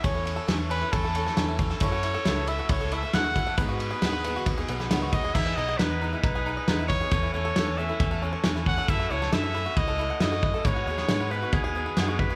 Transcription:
<<
  \new Staff \with { instrumentName = "Glockenspiel" } { \time 4/4 \key e \major \tempo 4 = 136 cis'''4 r8 b''8 a''4. r8 | cis'''4. e'''8 cis'''8 e'''8 fis'''4 | b''2. r8 dis''''8 | e''''8 dis''''8 b'''4 b'''4. cis''''8~ |
cis''''8 cis''''4 e''''4 r4 fis''''8 | e''''8 cis''''8 e''''4 dis''''4 dis''''4 | cis''''4. b'''8 gis'''4. b'''8 | }
  \new Staff \with { instrumentName = "Trumpet" } { \time 4/4 \key e \major cis''4 r8 b'8 a'4. r8 | cis''4. e''8 cis''8 e''8 fis''4 | b'2. r8 dis''8 | e''8 dis''8 b'4 b'4. cis''8~ |
cis''8 cis''4 e''4 r4 fis''8 | e''8 cis''8 e''4 dis''4 dis''4 | cis''4. b'8 gis'4. b'8 | }
  \new Staff \with { instrumentName = "Five-string banjo" } { \time 4/4 \key e \major cis'16 e'16 cis'16 a'16 cis'16 cis''16 cis'16 e'16 cis'16 a'16 cis'16 cis''16 cis'16 e'16 cis'16 a'16 | e'16 fis'16 e'16 a'16 e'16 e''16 e'16 fis'16 e'16 a'16 e'16 e''16 e'16 fis'16 e'16 a'16 | b16 fis'16 b16 gis'16 b16 b'16 b16 fis'16 b16 gis'16 b16 b'16 b16 fis'16 b16 gis'16 | dis'16 e'16 dis'16 gis'16 dis'16 dis''16 dis'16 e'16 dis'16 gis'16 dis'16 dis''16 dis'16 e'16 dis'16 gis'16 |
cis'16 e'16 cis'16 a'16 cis'16 cis''16 cis'16 e'16 cis'16 a'16 cis'16 cis''16 cis'16 e'16 cis'16 a'16 | e'16 fis'16 e'16 a'16 e'16 e''16 e'16 fis'16 e'16 a'16 e'16 fis''16 e'16 fis'16 e'16 a'16 | b16 fis'16 b16 gis'16 b16 b'16 b16 fis'16 b16 gis'16 b16 b'16 b16 fis'16 b16 gis'16 | }
  \new Staff \with { instrumentName = "Steel-string acoustic guitar" } { \time 4/4 \key e \major <e a cis' a'>16 <a cis' a'>8 <a cis' a'>16 <e a cis' a'>8 <e a cis' a'>16 <a cis' a'>8 <a cis' a'>16 <e a cis' a'>16 <a cis' a'>16 <e a cis' a'>8 <e a cis' a'>8 | <fis, cis e a cis' a'>16 <e a cis' a'>8 <e a cis' a'>16 <fis, cis e a cis' a'>8 <e a cis' a'>16 <e a cis' a'>8 <e a cis' a'>16 <e a cis' a'>16 <e a cis' a'>16 <fis, cis e a cis' a'>8 <e a cis' a'>16 <e a cis' a'>16 | <gis, dis fis b dis' gis'>16 <fis b dis' gis'>8 <fis b dis' gis'>16 <gis, dis fis b dis' gis'>8 <fis b dis' gis'>16 <fis b dis' gis'>8 <fis b dis' gis'>16 <fis b dis' gis'>16 <fis b dis' gis'>16 <gis, dis fis b dis' gis'>8 <fis b dis' gis'>8 | <e b dis' gis'>8 <e b dis' gis'>8 <e b dis' gis'>8 <e b dis' gis'>16 <b dis' gis'>8 <b dis' gis'>16 <e b dis' gis'>8 <e b dis' gis'>16 <b dis' gis'>8 <b dis' gis'>16 |
<e a cis' a'>8 <e a cis' a'>8 <e a cis' a'>8 <e a cis' a'>16 <a cis' a'>8 <a cis' a'>16 <e a cis' a'>8 <e a cis' a'>16 <a cis' a'>8 <a cis' a'>16 | <fis, cis e a cis' a'>8 <e a cis' a'>8 <fis, cis e a cis' a'>8 <e a cis' a'>16 <e a cis' a'>8 <e a cis' a'>16 <e a cis' a'>8 <fis, cis e a cis' a'>16 <e a cis' a'>8 <e a cis' a'>16 | <gis, dis fis b dis' gis'>8 <fis b dis' gis'>8 <gis, dis fis b dis' gis'>8 <fis b dis' gis'>16 <fis b dis' gis'>8 <fis b dis' gis'>16 <fis b dis' gis'>8 <gis, dis fis b dis' gis'>16 <fis b dis' gis'>8 <fis b dis' gis'>16 | }
  \new Staff \with { instrumentName = "Picked electric bass" } { \clef bass \time 4/4 \key e \major e,4 e,4 e,4 e,4 | fis,4 cis,4 cis,4 dis,4 | gis,4 dis,4 dis,8 b,,8 cis,8 dis,8 | e,8 b,,8 e,4 b,,4 e,4 |
e,8 e,8 e,4 e,4 e,4 | fis,8 cis,8 fis,4 cis,4 fis,4 | gis,8 dis,8 gis,4 dis,4 fis,4 | }
  \new DrumStaff \with { instrumentName = "Drums" } \drummode { \time 4/4 <bd cymr>8 cymr8 <cymr sn>8 cymr8 <bd cymr>8 cymr16 sn16 <cymr sn>8 <bd cymr>16 sn16 | <bd cymr>8 cymr8 <cymr sn>8 cymr8 <bd cymr>8 cymr8 <cymr sn>8 <bd cymr>8 | <bd cymr>8 cymr8 <cymr sn>8 cymr8 <bd cymr>8 cymr16 sn16 <cymr sn>8 <bd cymr>8 | <cymc bd>4 <rb sn>4 <bd rb>4 <rb sn>8 bd8 |
<bd rb>4 <rb sn>4 <bd rb>4 <rb sn>16 sn16 bd8 | <bd rb>8. sn16 <rb sn>4 <bd rb>4 <rb sn>8 bd8 | <bd rb>8. sn16 <rb sn>4 <bd rb>4 <rb sn>8 bd8 | }
>>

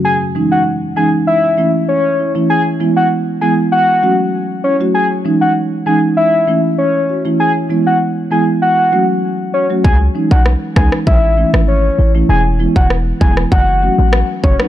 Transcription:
<<
  \new Staff \with { instrumentName = "Soft synth lead" } { \time 4/4 \key cis \minor \tempo 4 = 98 gis''16 r8 fis''16 r8 gis''16 r16 e''8. r16 cis''8. r16 | gis''16 r8 fis''16 r8 gis''16 r16 fis''8. r8. cis''16 r16 | gis''16 r8 fis''16 r8 gis''16 r16 e''8. r16 cis''8. r16 | gis''16 r8 fis''16 r8 gis''16 r16 fis''8. r8. cis''16 r16 |
gis''16 r8 fis''16 r8 gis''16 r16 e''8. r16 cis''8. r16 | gis''16 r8 fis''16 r8 gis''16 r16 fis''8. r8. cis''16 r16 | }
  \new Staff \with { instrumentName = "Marimba" } { \time 4/4 \key cis \minor r8 <e gis cis' dis'>16 r8. <e gis cis' dis'>16 r8. <e a cis' e'>16 r8. <cis' e'>16 <e a cis' e'>16 | r8 <e gis b e'>16 r8. <e gis b e'>16 r8. <fis a cis' fis'>16 r8. <cis' e'>16 <fis a cis' fis'>16 | r8 <e gis cis' dis'>16 r8. <e gis cis' dis'>16 r8. <e a cis' e'>16 r8. <cis' fis'>16 <e a cis' e'>16 | r8 <e gis b e'>16 r8. <e gis b e'>16 r8. <fis a cis' fis'>16 r8. <cis' fis'>16 <fis a cis' fis'>16 |
r8 <e gis cis' dis'>16 r8. <e gis cis' dis'>16 r8. <e a cis' e'>16 r8. <cis' e'>16 <e a cis' e'>16 | r8 <e gis b e'>16 r8. <e gis b e'>16 r8. <fis a cis' fis'>16 r8. <cis' fis'>16 <fis a cis' dis'>16 | }
  \new Staff \with { instrumentName = "808-style bass" } { \clef bass \time 4/4 \key cis \minor r1 | r1 | r1 | r1 |
cis,8 r16 b,,8 r16 cis,16 r16 a,,8. gis,,8. a,,8 | e,,8. e,,8. e,,8 fis,,8. a,,8 r16 fis,,16 r16 | }
  \new DrumStaff \with { instrumentName = "Drums" } \drummode { \time 4/4 r4 r4 r4 r4 | r4 r4 r4 r4 | r4 r4 r4 r4 | r4 r4 r4 r4 |
bd8. bd16 ss8 <bd ss>16 ss16 bd8. ss16 r4 | r8. bd16 ss8 bd16 ss16 bd4 ss8 bd16 ss16 | }
>>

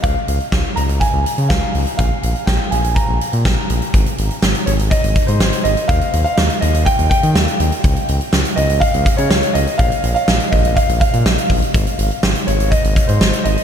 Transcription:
<<
  \new Staff \with { instrumentName = "Grand piano" } { \time 4/4 \key aes \major \tempo 4 = 123 f''4. bes''8 aes''4 f''4 | f''4 g''8 aes''8 bes''4 r4 | r4. des''8 ees''8. c''8. ees''8 | f''8. f''8. ees''8 g''8 g''4 r8 |
r4. ees''8 f''8. des''8. ees''8 | f''8. f''8. ees''8 f''8 f''4 r8 | r4. des''8 ees''8. c''8. ees''8 | }
  \new Staff \with { instrumentName = "Analog synth bass" } { \clef bass \time 4/4 \key aes \major des,16 r16 des,16 r16 des,16 r16 des,16 des,16 r16 des,16 r16 des16 des,16 r16 des,16 r16 | bes,,16 r16 bes,,16 r16 bes,,16 r16 bes,,16 bes,,16 r16 bes,,16 r16 bes,16 bes,,16 r16 bes,,16 r16 | aes,,16 r16 aes,,16 r16 aes,,16 r16 aes,,16 aes,,16 r16 aes,,16 r16 aes,16 aes,,16 r16 aes,,16 r16 | ees,16 r16 ees,16 r16 ees,16 r16 ees,16 ees,16 r16 ees,16 r16 ees16 ees,16 r16 ees,16 r16 |
des,16 r16 des,16 r16 des,16 r16 des,16 des,16 r16 des,16 r16 des16 des,16 r16 des,16 r16 | bes,,16 r16 bes,,16 r16 bes,,16 r16 bes,,16 bes,,16 r16 bes,,16 r16 bes,16 bes,,16 r16 bes,,16 r16 | aes,,16 r16 aes,,16 r16 aes,,16 r16 aes,,16 aes,,16 r16 aes,,16 r16 aes,16 aes,,16 r16 aes,,16 r16 | }
  \new DrumStaff \with { instrumentName = "Drums" } \drummode { \time 4/4 <hh bd>8 hh16 hh16 <bd sn>8 hh16 hh16 <hh bd>8 hh16 hh16 <bd sn>8 hho16 hh16 | <hh bd>8 hh16 hh16 <bd sn>8 hh16 hh16 <hh bd>8 hh16 hh16 <bd sn>8 hh16 hh16 | <hh bd>16 hh16 hh16 hh16 sn16 hh16 hh16 hh16 <hh bd>16 hh16 <hh bd>16 hh16 sn16 hh16 hh16 hh16 | <hh bd>16 hh16 hh16 hh16 sn16 hh16 hh16 hh16 <hh bd>16 hh16 <hh bd>16 hh16 sn16 hh16 hh16 hh16 |
<hh bd>16 hh16 hh16 hh16 sn16 hh16 hh16 hh16 <hh bd>16 hh16 <hh bd>16 hh16 sn16 hh16 hh16 hh16 | <hh bd>16 hh16 hh16 hh16 sn16 hh16 <hho bd>16 hh16 <hh bd>16 hh16 <hh bd>16 hh16 sn16 hh16 <hho bd>16 hh16 | <hh bd>16 hh16 hh16 hh16 sn16 hh16 hh16 hh16 <hh bd>16 hh16 <hh bd>16 hh16 sn16 hh16 hh16 hh16 | }
>>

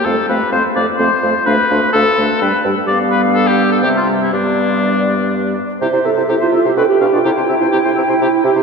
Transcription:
<<
  \new Staff \with { instrumentName = "Flute" } { \time 3/4 \key c \major \tempo 4 = 126 f''8 f''8 f''8 f''8 f''8 f''8 | f''8 f''8 f''8 f''8 g''8 g''8 | f''2 e''4 | d''2~ d''8 r8 |
e''2 g''4~ | g''2. | }
  \new Staff \with { instrumentName = "Oboe" } { \time 3/4 \key c \major a'8 b'8 c''8 d''8 c''4 | b'4 a'4 b'8 r8 | d''8 b'8 a'16 g'8 a'16 g'16 f'8 e'16 | d'2~ d'8 r8 |
g'16 c''16 e''16 c''16 g'16 c''16 e''16 c''16 b'16 r16 f''16 d''16 | g'16 c''16 e''16 c''16 g'16 c''16 e''16 c''16 g'16 r16 e''16 c''16 | }
  \new Staff \with { instrumentName = "French horn" } { \time 3/4 \key c \major a8 a8 a8 a8 a8 a8 | a8 a8 a8 a8 g8 g8 | g2 g4 | g2~ g8 r8 |
e'16 e'16 e'16 e'16 e'16 e'16 e'16 e'16 d'16 r16 d'16 d'16 | e'16 e'16 e'16 e'16 e'16 e'16 e'16 e'16 e'16 r16 e'16 e'16 | }
  \new Staff \with { instrumentName = "Clarinet" } { \time 3/4 \key c \major c'8 c'8 c'8 c'8 c'8 c'8 | d'8 d'8 d'8 d'8 d'8 d'8 | b2 c'4 | b2~ b8 r8 |
c''8 a'8 g'16 f'8 g'16 a'16 g'8 f'16 | e'2~ e'8 g'8 | }
  \new Staff \with { instrumentName = "Bassoon" } { \clef bass \time 3/4 \key c \major f,8 f,8 f,8 f,8 f,8 f,8 | d,8 d,8 d,8 d,8 g,8 g,8 | g,2 c4 | g,2~ g,8 r8 |
c16 c16 c16 c16 c16 c16 c16 c16 b,16 r16 b,16 b,16 | c16 c16 c16 c16 c16 c16 c16 c16 c16 r16 c16 c16 | }
>>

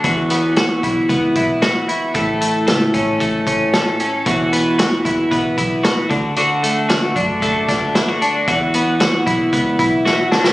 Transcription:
<<
  \new Staff \with { instrumentName = "Clean electric guitar" } { \time 4/4 \key e \mixolydian \tempo 4 = 114 <e, fis'>8 b8 fis'8 e'8 b8 e'8 fis'8 e'8 | <a, a'>8 a8 a'8 cis'8 a8 cis'8 a'8 cis'8 | <e, fis'>8 b8 fis'8 e'8 b8 e'8 fis'8 d8 | <d fis'>8 a8 fis'8 d'8 a8 d'8 e'16 fis'16 d'8 |
<e, fis'>8 b8 fis'8 e'8 b8 e'8 fis'8 d'16 e'16 | }
  \new Staff \with { instrumentName = "Fingered electric bass" } { \clef bass \time 4/4 \key e \mixolydian e,4. b,,8 cis,8 b,,4 r8 | a,,4 cis,8 a,,2 r8 | e,,4. fis,,8 e,,8 b,,4 d,8~ | d,4 d,8 fis,2 r8 |
e,4. b,,8 cis,8 b,,4 r8 | }
  \new DrumStaff \with { instrumentName = "Drums" } \drummode { \time 4/4 <hh bd>8 hh8 <hh sn>8 <hh bd>8 <hh bd>8 <hh bd>8 <hh sn>8 hh8 | <hh bd>8 hh8 <hh sn>8 <hh bd>8 <hh bd>8 <hh bd>8 <hh sn>8 hh8 | <hh bd>8 hh8 <hh sn>8 <hh bd>8 <hh bd>8 <hh bd>8 <hh sn>8 <hh bd>8 | hh8 hh8 <hh sn>8 <hh bd>8 <hh bd>8 <hh bd sn>8 <hh sn>8 hh8 |
<hh bd>8 hh8 <hh sn>8 <hh bd>8 <hh bd>8 <hh bd>8 sn8 sn16 sn16 | }
>>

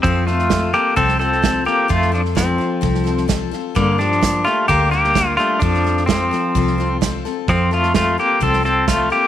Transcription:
<<
  \new Staff \with { instrumentName = "Steel-string acoustic guitar" } { \time 4/4 \key f \mixolydian \tempo 4 = 129 <f c' f' a'>8 <c' f' a'>8 <f c' f' a'>8 <c' f' a'>8 <f c' f' a'>8 <c' f' a'>8 <f c' f' a'>8 <c' f' a'>8 | <f c' f' a'>8 <c' f' a'>8 <f c' f' a'>8 <c' f' a'>8 <f c' f' a'>8 <c' f' a'>8 <f c' f' a'>8 <c' f' a'>8 | <g, d g bes d' g'>8 <g bes d' g'>8 <g bes d' g'>8 <g bes d' g'>8 <g, d g bes d' g'>8 <g bes d' g'>8 <g bes d' g'>8 <g bes d' g'>8 | <f c' f' a'>8 <c' f' a'>8 <f c' f' a'>8 <c' f' a'>8 <f c' f' a'>8 <c' f' a'>8 <f c' f' a'>8 <c' f' a'>8 |
<f c' f' a'>8 <c' f' a'>8 <f c' f' a'>8 <c' f' a'>8 <f c' f' a'>8 <c' f' a'>8 <f c' f' a'>8 <c' f' a'>8 | }
  \new Staff \with { instrumentName = "Pedal steel guitar" } { \time 4/4 \key f \mixolydian <f c'>8 <a f'>4 <bes g'>8 <c' a'>8 <c' a'>4 <bes g'>8 | <a f'>8 <f d'>8 <f c'>2 r4 | <d bes>8 <f d'>4 <a f'>8 <bes g'>8 <bes g'>4 <a f'>8 | <f d'>4 <f c'>2 r4 |
<f c'>8 <a f'>8 <a f'>8 <bes g'>8 <c' a'>8 <c' a'>8 <a f'>8 <bes g'>8 | }
  \new Staff \with { instrumentName = "Fingered electric bass" } { \clef bass \time 4/4 \key f \mixolydian f,2 c,2 | f,2 c,2 | g,2 d,2 | f,2 c,2 |
f,2 c,2 | }
  \new DrumStaff \with { instrumentName = "Drums" } \drummode { \time 4/4 <bd sn>8 sn16 sn16 <hhp bd sn>8 sn8 <bd sn>16 sn16 sn16 sn16 <hhp bd sn>8 sn8 | <bd sn>16 sn16 sn16 sn16 <hhp bd sn>8 sn8 <bd sn>16 sn16 sn16 sn16 <hhp bd sn>8 sn8 | <bd sn>8 sn16 sn16 <hhp bd sn>8 sn8 <bd sn>8 sn16 sn16 <hhp bd sn>8 sn8 | <bd sn>16 sn16 sn16 sn16 <hhp bd sn>8 sn8 <bd sn>16 sn16 sn8 <hhp bd sn>8 sn8 |
<bd sn>8 sn16 sn16 <hhp bd sn>8 sn8 <bd sn>16 sn16 sn8 <hhp bd sn>8 sn8 | }
>>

